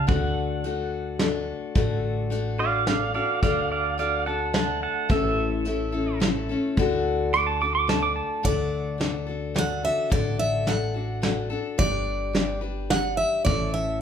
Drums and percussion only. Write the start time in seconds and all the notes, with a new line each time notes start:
0.08 kick, closed hi-hat
0.64 closed hi-hat
1.19 snare, closed hi-hat
1.76 kick, closed hi-hat
2.32 closed hi-hat
2.87 snare, closed hi-hat
3.43 kick, closed hi-hat
3.99 closed hi-hat
4.54 snare, closed hi-hat
5.10 kick, closed hi-hat
5.65 closed hi-hat
6.21 snare, closed hi-hat
6.77 kick, closed hi-hat
7.33 closed hi-hat
7.89 snare, closed hi-hat
8.45 kick, closed hi-hat
9.01 snare, closed hi-hat
9.56 snare, closed hi-hat
10.11 kick, closed hi-hat
10.67 snare, closed hi-hat
11.23 snare, closed hi-hat
11.79 kick, closed hi-hat
12.35 snare, closed hi-hat
12.90 snare, closed hi-hat
13.46 kick, closed hi-hat